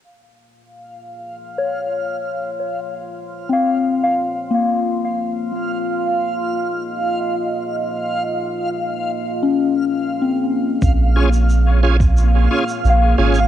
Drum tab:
SH |----------------|----------------|----------------|----------------|
BD |----------------|----------------|----------------|----------------|

SH |x--xx--xx--xx--x|
BD |o------o--------|